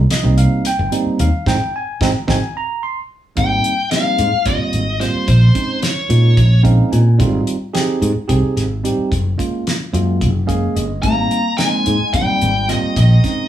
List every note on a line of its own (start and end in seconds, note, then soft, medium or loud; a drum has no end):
0.11 0.37 D#5 medium
0.11 snare loud
0.11 closed hi-hat loud
0.23 0.45 C2 medium
0.23 0.68 G3 medium
0.23 0.69 A#3 medium
0.23 0.69 C4 medium
0.23 0.69 D#4 medium
0.38 0.64 F5 medium
0.38 closed hi-hat medium
0.65 0.92 G5 medium
0.65 snare soft
0.65 closed hi-hat medium
0.79 0.89 G1 medium
0.92 1.28 G3 medium
0.92 1.28 A#3 medium
0.92 1.28 C4 medium
0.92 1.28 D#4 medium
0.92 closed hi-hat medium
1.06 muted fretless electric bass stroke soft
1.19 1.30 D#2 loud
1.19 1.46 F5 medium
1.19 closed hi-hat medium
1.46 1.56 G#1 medium
1.46 1.55 G#3 medium
1.46 1.55 C4 medium
1.46 1.55 D#4 medium
1.46 1.73 G5 medium
1.46 kick medium
1.46 snare loud
1.76 2.01 G#5 medium
2.01 2.11 G#1 medium
2.01 2.10 G#3 loud
2.01 2.10 C4 loud
2.01 2.10 D#4 loud
2.01 kick loud
2.01 snare loud
2.28 2.38 G#1 loud
2.28 2.36 G#3 medium
2.28 2.36 C4 loud
2.28 2.36 D#4 medium
2.28 2.55 G#5 medium
2.28 kick loud
2.28 snare loud
2.57 2.82 A#5 medium
2.83 2.99 C6 medium
3.36 3.58 G#1 medium
3.36 3.72 G3 medium
3.36 3.73 A#3 medium
3.36 3.73 C4 medium
3.36 3.73 D#4 medium
3.36 3.88 G5 medium
3.36 kick loud
3.36 closed hi-hat medium
3.64 closed hi-hat medium
3.91 4.27 G3 medium
3.91 4.28 A#3 medium
3.91 4.28 C4 medium
3.91 4.28 D#4 medium
3.91 4.47 F5 medium
3.91 snare loud
3.91 closed hi-hat medium
4.18 4.29 G#2 medium
4.18 closed hi-hat medium
4.33 muted fretless electric bass stroke soft
4.45 4.57 G1 medium
4.45 4.82 G3 medium
4.45 4.82 A#3 medium
4.45 4.82 C4 medium
4.45 4.82 F4 medium
4.45 5.01 D#5 medium
4.45 kick loud
4.45 closed hi-hat medium
4.61 muted fretless electric bass stroke soft
4.73 5.05 G#1 medium
4.73 closed hi-hat medium
5.00 5.28 G3 medium
5.00 5.28 A#3 medium
5.00 5.28 C4 medium
5.00 5.28 F4 medium
5.00 5.27 C5 medium
5.00 snare soft
5.00 closed hi-hat medium
5.15 muted fretless electric bass stroke soft
5.28 5.49 A#1 medium
5.28 5.79 C5 medium
5.28 kick loud
5.28 closed hi-hat medium
5.54 5.91 G#3 medium
5.54 5.91 C4 medium
5.54 5.91 C#4 medium
5.54 5.92 D#4 medium
5.54 kick medium
5.54 closed hi-hat medium
5.83 6.61 C#5 medium
5.83 snare loud
5.83 closed hi-hat medium
6.09 6.39 A#2 medium
6.09 6.46 G#3 medium
6.09 6.46 A#3 medium
6.09 6.46 C#4 medium
6.09 6.46 D#4 medium
6.09 closed hi-hat medium
6.37 6.80 A#1 medium
6.37 kick medium
6.37 closed hi-hat medium
6.63 7.00 G#3 medium
6.63 7.00 C4 medium
6.63 7.00 C#4 medium
6.63 7.01 D#4 medium
6.63 6.90 F5 medium
6.63 kick medium
6.63 closed hi-hat medium
6.92 7.21 A#2 medium
6.92 7.17 G#5 medium
6.92 closed hi-hat medium
7.18 7.41 G#1 medium
7.18 7.55 G3 medium
7.18 7.56 C4 medium
7.18 7.56 D#4 medium
7.18 7.56 F4 medium
7.18 kick loud
7.18 closed hi-hat medium
7.47 closed hi-hat medium
7.73 8.10 C4 medium
7.73 8.11 D#4 medium
7.73 8.10 G4 medium
7.73 8.11 G#4 medium
7.73 snare loud
7.73 closed hi-hat medium
8.02 8.12 G#2 medium
8.02 closed hi-hat medium
8.16 muted fretless electric bass stroke soft
8.28 8.40 C2 medium
8.28 8.65 C4 medium
8.28 8.65 D#4 medium
8.28 8.65 G4 medium
8.28 8.65 G#4 medium
8.28 kick medium
8.28 closed hi-hat medium
8.43 muted fretless electric bass stroke soft
8.57 8.88 G#1 medium
8.57 snare soft
8.57 closed hi-hat medium
8.84 9.11 G3 medium
8.84 9.11 C4 medium
8.84 9.11 D#4 medium
8.84 9.12 G4 medium
8.84 closed hi-hat medium
8.98 muted fretless electric bass stroke soft
9.12 9.33 F#1 medium
9.12 kick loud
9.12 closed hi-hat medium
9.38 9.75 G#3 medium
9.38 9.75 A#3 medium
9.38 9.75 C#4 medium
9.38 9.75 F4 medium
9.38 kick medium
9.38 closed hi-hat medium
9.67 snare loud
9.67 closed hi-hat medium
9.93 10.24 F#2 medium
9.93 10.30 G#3 medium
9.93 10.30 A#3 medium
9.93 10.30 C#4 medium
9.93 10.30 F4 medium
9.93 closed hi-hat medium
10.21 10.64 F#1 medium
10.21 kick medium
10.21 closed hi-hat medium
10.47 10.84 G#3 medium
10.47 10.84 A#3 medium
10.47 10.84 C#4 medium
10.47 10.85 G#4 medium
10.47 10.73 F5 medium
10.47 kick medium
10.47 closed hi-hat medium
10.76 11.04 G1 medium
10.76 11.01 D#5 medium
10.76 closed hi-hat medium
11.02 11.25 G#1 medium
11.02 11.40 G3 medium
11.02 11.40 A#3 medium
11.02 11.55 A#3 medium
11.02 11.40 C4 medium
11.02 11.40 D#4 medium
11.02 11.59 A#5 medium
11.02 kick medium
11.02 closed hi-hat medium
11.31 closed hi-hat medium
11.58 11.95 G#3 medium
11.58 12.11 G#3 medium
11.58 11.95 A#3 medium
11.58 11.95 C4 medium
11.58 11.95 D#4 medium
11.58 12.14 G#5 medium
11.58 snare loud
11.58 closed hi-hat medium
11.86 11.97 G#2 medium
11.86 closed hi-hat medium
12.01 muted fretless electric bass stroke soft
12.13 12.24 G1 medium
12.13 12.50 G3 medium
12.13 12.66 G3 medium
12.13 12.50 A#3 medium
12.13 12.50 C4 medium
12.13 12.50 D#4 medium
12.13 12.70 G5 medium
12.13 kick loud
12.13 closed hi-hat medium
12.29 muted fretless electric bass stroke soft
12.41 12.73 G#1 medium
12.41 closed hi-hat medium
12.69 12.95 D#3 medium
12.69 12.96 G3 medium
12.69 12.96 A#3 medium
12.69 12.96 C4 medium
12.69 12.96 F4 medium
12.69 12.97 D#5 medium
12.69 snare soft
12.69 closed hi-hat medium
12.83 muted fretless electric bass stroke soft
12.96 13.18 A#1 medium
12.96 13.48 D#3 medium
12.96 13.48 D#5 medium
12.96 kick loud
12.96 closed hi-hat medium
13.24 13.48 G#3 medium
13.24 13.48 C4 medium
13.24 13.48 C#4 medium
13.24 13.48 D#4 medium
13.24 kick medium
13.24 snare soft
13.24 closed hi-hat medium